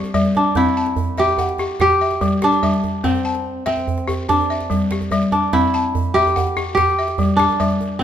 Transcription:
Already playing: G3 C4 D4 G4 E5
0.04 djembe tone
0.14 G3 E5, djembe slap, djembe bass
0.25 djembe slap
0.35 D4, djembe tone
0.55 C4 E4, djembe slap, djembe bass
0.66 djembe tone
0.77 A5
0.86 djembe slap
0.96 djembe tone, djembe bass
1.07 djembe slap
1.17 G4 E5, djembe slap
1.28 djembe tone
1.38 F#5, djembe bass
1.49 djembe slap
1.58 G4, djembe tone
1.69 djembe slap
1.80 G4, djembe slap, djembe bass
1.90 djembe tone
2.01 E5
2.11 djembe slap
2.21 G3, djembe tone, djembe bass
2.42 D4 G4, djembe slap
2.52 djembe tone
2.63 G3 E5, djembe slap, djembe bass
2.74 djembe slap
2.84 djembe tone
3.04 C4, djembe slap, djembe bass
3.14 djembe tone
3.25 A5
3.35 djembe slap
3.66 C4 E5, djembe slap
3.77 djembe tone
3.88 djembe slap, djembe bass
3.98 djembe slap
4.08 G4, djembe tone
4.28 D4 G4, djembe slap, djembe bass
4.40 djembe tone
4.50 E5
4.61 djembe slap
4.70 G3, djembe tone, djembe bass
4.91 G4, djembe slap
5.01 djembe slap, djembe tone
5.11 G3 E5, djembe bass
5.22 djembe slap
5.32 D4, djembe tone
5.53 C4 E4, djembe slap, djembe bass
5.64 djembe tone
5.74 A5
5.95 djembe tone, djembe bass
6.05 djembe slap
6.14 G4 E5, djembe slap
6.27 djembe tone
6.36 F#5, djembe bass
6.47 djembe slap
6.56 G4, djembe tone
6.67 djembe slap
6.75 G4, djembe slap, djembe bass
6.88 djembe tone
6.99 E5
7.08 djembe slap
7.18 G3, djembe tone, djembe bass
7.37 D4 G4, djembe slap
7.49 djembe tone
7.60 G3 E5, djembe slap, djembe bass
7.70 djembe slap
7.81 djembe tone
7.99 C4

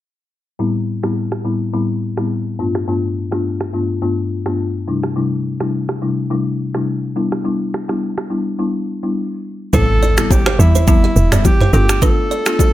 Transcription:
0.59 A2 G3 B3 C4 E4
1.03 A2 G3 B3 C4 E4, finger snap, cross-stick
1.32 finger snap, cross-stick
1.45 A2 G3 B3 C4 E4
1.73 A2 G3 B3 C4 E4
2.17 A2 G3 B3 C4 E4, finger snap, cross-stick
2.59 G2 A3 B3 D4 F4
2.75 finger snap, cross-stick
2.88 G2 A3 B3 D4 F4
3.32 G2 A3 B3 D4 F4, finger snap, cross-stick
3.61 finger snap, cross-stick
3.74 G2 A3 B3 D4 F4
4.02 G2 A3 B3 D4 F4
4.46 G2 A3 B3 D4 F4, finger snap, cross-stick
4.88 C3 G3 A3 D4 E4
5.03 finger snap, cross-stick
5.16 C3 G3 A3 D4 E4, shaker
5.45 shaker
5.60 C3 G3 A3 D4 E4, finger snap, cross-stick, shaker
5.74 shaker
5.89 finger snap, cross-stick
6.02 C3 G3 A3 D4 E4, shaker
6.18 shaker
6.30 C3 G3 A3 D4 E4, shaker
6.59 shaker
6.75 C3 G3 A3 D4 E4, finger snap, cross-stick, shaker
6.87 shaker
7.16 G3 B3 D4 E4, shaker
7.32 finger snap, cross-stick, shaker
7.44 G3 B3 D4 E4, shaker
7.74 finger snap, cross-stick
7.88 G3 B3 D4 E4, finger snap, cross-stick
8.03 shaker
8.18 finger snap, cross-stick
8.30 G3 B3 D4 E4, shaker
8.46 shaker
8.59 G3 B3 D4 E4
9.03 G3 B3 D4 E4
9.73 A1 G3 B3 C4 E4 A4 C5, kick, impact, low conga, shaker
10.03 F4 D5, shaker
10.17 G3 B3 C4 E4, finger snap, cross-stick, shaker
10.31 G4, kick, high bongo, low bongo, shaker
10.46 E4 C5, finger snap, cross-stick
10.59 E2 G3 B3 C4 E4, shaker
10.75 E4 C5, shaker
10.87 G3 B3 C4 E4, kick, low conga, shaker
11.04 G4 E5
11.16 E1, shaker
11.32 G3 B3 C4 E4 F4 D5, finger snap, cross-stick, mid tom, low bongo, shaker
11.45 G4, kick, high bongo, low conga, shaker
11.60 E4 C5, mid tom
11.73 G1 A3 B3 D4 F4 G4 A4, shaker
11.89 finger snap, cross-stick, shaker
12.02 A3 B3 D4 F4 A4 B4, kick, low conga, shaker
12.31 F4 D5, shaker
12.46 A3 B3 D4 F4, finger snap, cross-stick, shaker
12.59 kick, high bongo, low bongo, shaker

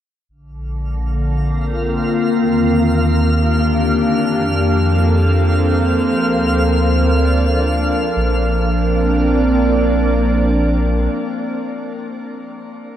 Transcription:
0.29 A#1 D3 A#3 F5 F6
0.68 A#3
1.18 C4 F4 A#4
2.26 D#2 D#3
3.15 D4 G4
4.22 F2 F3
4.50 A4
4.97 C4
5.12 C5
6.20 D2
6.76 D5
7.05 D4
8.16 A#1 F3 A#3
8.29 C4
8.43 D4
8.59 A#4
8.74 D5

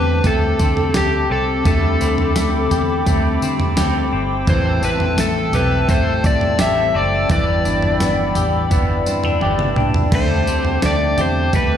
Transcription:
Already playing: E2 D3 G3 A3 C4 G4 A4 B4 G5 A5 D6
0.23 D2 G3 A3 C4 G4 A4, kick, floor tom, tambourine
0.59 D3 C4, kick, tambourine
0.77 floor tom
0.93 D2 G3 C4 G4 A4, snare, tambourine
1.30 C2 C4 A4
1.63 D2 D3 G3 A3 C4 B5, kick, floor tom, tambourine
1.68 G4 A4
2.01 D2 C4, tambourine
2.18 floor tom
2.36 D2 A3, snare, tambourine
2.71 E2 G4, floor tom, tambourine
3.05 D2 G3 A3 C4 G4 A4, kick, floor tom, tambourine
3.42 D3 C4, tambourine
3.60 floor tom
3.76 D2 G3 C4 G4 A4, snare, tambourine
4.12 G1 C4
4.47 A1 A2 E3 G3 C4 E4 A4 C5 A5 E6, kick, floor tom, tambourine
4.82 A1 C4 B4, tambourine
5.00 floor tom
5.18 A1 A3 A4, snare, tambourine
5.53 B1 G3 C4 E4 G4 A4 B4, floor tom, tambourine
5.87 A1 G3 A3 C4 E4 A4 C5, kick, floor tom, tambourine
6.24 A2 C4 D5, kick, tambourine
6.41 floor tom
6.58 A1 G3 C4 E4 G4 A4 E5, snare, tambourine
6.95 F#1 C4 D5
7.28 G1 E3 G3 B3 E4 D5 G5 B5, kick, floor tom, tambourine
7.32 B4 D5
7.65 G1 D4, tambourine
7.82 floor tom
8.00 G1 B3, snare, tambourine
8.35 A1 G4, floor tom, tambourine
8.70 G1 B3 E4 B4 D5, kick, floor tom, tambourine
9.06 G2 C4, tambourine
9.24 D4, floor tom
9.40 G1 B3 E4 G4 B4 D5, high tom
9.59 mid tom
9.76 C2 D4, mid tom
9.94 floor tom
10.11 D2 D3 G3 A3 C4 A5 D6, kick, floor tom, crash, tambourine
10.15 G4 A4 C5
10.47 D2 C4, tambourine
10.65 floor tom
10.82 D2 A3 D5, snare, tambourine
11.18 E2 G4 C5, floor tom, tambourine
11.52 D2 G3 A3 C4 G4 A4 B4, kick, floor tom, tambourine

